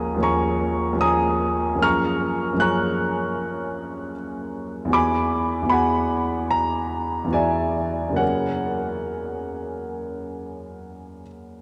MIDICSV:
0, 0, Header, 1, 2, 480
1, 0, Start_track
1, 0, Key_signature, 6, "major"
1, 0, Tempo, 781250
1, 1125, Time_signature, 4, 2, 24, 8
1, 3511, Tempo, 832178
1, 4951, Tempo, 877193
1, 6815, End_track
2, 0, Start_track
2, 0, Title_t, "Grand piano"
2, 0, Program_c, 0, 0
2, 0, Control_c, 0, 64, 127
2, 0, Note_on_c, 0, 39, 49
2, 0, Note_on_c, 0, 53, 39
2, 0, Note_on_c, 0, 58, 43
2, 0, Note_on_c, 0, 61, 43
2, 0, Note_on_c, 0, 68, 40
2, 0, Note_on_c, 0, 77, 58
2, 0, Note_on_c, 0, 78, 60
2, 0, Note_on_c, 0, 80, 64
2, 0, Note_on_c, 0, 82, 58
2, 0, Note_on_c, 0, 87, 83
2, 78, Note_off_c, 0, 39, 0
2, 87, Note_on_c, 0, 39, 57
2, 90, Note_off_c, 0, 53, 0
2, 99, Note_on_c, 0, 53, 48
2, 102, Note_off_c, 0, 58, 0
2, 111, Note_on_c, 0, 58, 45
2, 115, Note_off_c, 0, 61, 0
2, 124, Note_on_c, 0, 61, 50
2, 127, Note_off_c, 0, 68, 0
2, 129, Note_off_c, 0, 80, 0
2, 129, Note_off_c, 0, 82, 0
2, 137, Note_on_c, 0, 68, 45
2, 138, Note_on_c, 0, 80, 68
2, 140, Note_on_c, 0, 85, 83
2, 145, Note_on_c, 0, 82, 69
2, 149, Note_off_c, 0, 87, 0
2, 560, Note_off_c, 0, 39, 0
2, 569, Note_on_c, 0, 39, 53
2, 572, Note_off_c, 0, 53, 0
2, 581, Note_on_c, 0, 53, 43
2, 585, Note_off_c, 0, 58, 0
2, 594, Note_on_c, 0, 58, 45
2, 599, Note_off_c, 0, 61, 0
2, 608, Note_on_c, 0, 61, 47
2, 609, Note_off_c, 0, 68, 0
2, 610, Note_off_c, 0, 80, 0
2, 613, Note_off_c, 0, 82, 0
2, 618, Note_on_c, 0, 68, 46
2, 619, Note_on_c, 0, 87, 87
2, 623, Note_on_c, 0, 82, 67
2, 626, Note_on_c, 0, 80, 72
2, 635, Note_off_c, 0, 85, 0
2, 1070, Note_off_c, 0, 53, 0
2, 1071, Note_on_c, 0, 42, 54
2, 1073, Note_off_c, 0, 39, 0
2, 1080, Note_on_c, 0, 53, 45
2, 1086, Note_off_c, 0, 58, 0
2, 1091, Note_off_c, 0, 82, 0
2, 1093, Note_off_c, 0, 61, 0
2, 1093, Note_off_c, 0, 80, 0
2, 1098, Note_off_c, 0, 68, 0
2, 1100, Note_on_c, 0, 58, 46
2, 1107, Note_on_c, 0, 61, 41
2, 1114, Note_off_c, 0, 87, 0
2, 1119, Note_on_c, 0, 68, 47
2, 1121, Note_on_c, 0, 89, 96
2, 1126, Note_on_c, 0, 82, 74
2, 1129, Note_on_c, 0, 85, 72
2, 1136, Control_c, 0, 64, 0
2, 1141, Note_off_c, 0, 77, 0
2, 1141, Note_off_c, 0, 78, 0
2, 1228, Control_c, 0, 64, 127
2, 1545, Note_off_c, 0, 42, 0
2, 1554, Note_on_c, 0, 42, 55
2, 1556, Note_off_c, 0, 53, 0
2, 1565, Note_on_c, 0, 53, 42
2, 1569, Note_off_c, 0, 58, 0
2, 1578, Note_off_c, 0, 82, 0
2, 1578, Note_on_c, 0, 58, 44
2, 1579, Note_off_c, 0, 61, 0
2, 1580, Note_off_c, 0, 85, 0
2, 1585, Note_off_c, 0, 68, 0
2, 1592, Note_on_c, 0, 61, 47
2, 1597, Note_on_c, 0, 90, 89
2, 1600, Note_off_c, 0, 89, 0
2, 1601, Note_on_c, 0, 68, 39
2, 1606, Note_on_c, 0, 85, 65
2, 1607, Note_on_c, 0, 82, 61
2, 2527, Note_off_c, 0, 85, 0
2, 2528, Note_off_c, 0, 82, 0
2, 2547, Note_off_c, 0, 90, 0
2, 2981, Note_on_c, 0, 40, 51
2, 2984, Note_off_c, 0, 42, 0
2, 2989, Note_off_c, 0, 53, 0
2, 2996, Note_off_c, 0, 58, 0
2, 2996, Note_on_c, 0, 52, 44
2, 3002, Note_on_c, 0, 59, 44
2, 3003, Note_off_c, 0, 61, 0
2, 3007, Note_off_c, 0, 68, 0
2, 3010, Note_on_c, 0, 66, 46
2, 3026, Note_on_c, 0, 68, 44
2, 3030, Note_on_c, 0, 86, 87
2, 3034, Note_on_c, 0, 83, 72
2, 3035, Note_on_c, 0, 80, 70
2, 3042, Control_c, 0, 64, 0
2, 3146, Control_c, 0, 64, 127
2, 3446, Note_off_c, 0, 40, 0
2, 3456, Note_on_c, 0, 40, 50
2, 3462, Note_off_c, 0, 52, 0
2, 3471, Note_on_c, 0, 52, 41
2, 3473, Note_off_c, 0, 59, 0
2, 3482, Note_off_c, 0, 66, 0
2, 3482, Note_on_c, 0, 59, 38
2, 3487, Note_off_c, 0, 83, 0
2, 3488, Note_off_c, 0, 80, 0
2, 3492, Note_off_c, 0, 68, 0
2, 3492, Note_on_c, 0, 66, 39
2, 3499, Note_on_c, 0, 83, 88
2, 3501, Note_on_c, 0, 68, 42
2, 3509, Note_off_c, 0, 86, 0
2, 3510, Note_on_c, 0, 78, 62
2, 3514, Note_on_c, 0, 80, 68
2, 3960, Note_off_c, 0, 78, 0
2, 3962, Note_off_c, 0, 80, 0
2, 3967, Note_on_c, 0, 82, 91
2, 3978, Note_off_c, 0, 83, 0
2, 4384, Note_off_c, 0, 40, 0
2, 4393, Note_on_c, 0, 40, 52
2, 4400, Note_off_c, 0, 52, 0
2, 4405, Note_off_c, 0, 59, 0
2, 4408, Note_on_c, 0, 52, 40
2, 4413, Note_on_c, 0, 59, 41
2, 4421, Note_off_c, 0, 66, 0
2, 4430, Note_on_c, 0, 66, 41
2, 4432, Note_off_c, 0, 68, 0
2, 4441, Note_on_c, 0, 80, 75
2, 4442, Note_on_c, 0, 68, 39
2, 4446, Note_on_c, 0, 74, 61
2, 4446, Note_on_c, 0, 76, 59
2, 4452, Note_off_c, 0, 82, 0
2, 4879, Note_on_c, 0, 42, 50
2, 4891, Note_on_c, 0, 49, 39
2, 4901, Note_on_c, 0, 58, 39
2, 4902, Note_off_c, 0, 40, 0
2, 4902, Note_off_c, 0, 66, 0
2, 4910, Note_off_c, 0, 52, 0
2, 4911, Note_on_c, 0, 66, 39
2, 4912, Note_off_c, 0, 59, 0
2, 4918, Note_off_c, 0, 68, 0
2, 4921, Note_off_c, 0, 74, 0
2, 4921, Note_off_c, 0, 76, 0
2, 4924, Note_on_c, 0, 78, 69
2, 4926, Note_on_c, 0, 68, 42
2, 4926, Note_on_c, 0, 73, 52
2, 4931, Note_on_c, 0, 70, 57
2, 4942, Note_off_c, 0, 80, 0
2, 4962, Control_c, 0, 64, 0
2, 5075, Control_c, 0, 64, 127
2, 6593, Note_off_c, 0, 73, 0
2, 6595, Note_off_c, 0, 70, 0
2, 6613, Note_off_c, 0, 78, 0
2, 6815, Note_off_c, 0, 42, 0
2, 6815, Note_off_c, 0, 49, 0
2, 6815, Note_off_c, 0, 58, 0
2, 6815, Note_off_c, 0, 66, 0
2, 6815, Note_off_c, 0, 68, 0
2, 6815, End_track
0, 0, End_of_file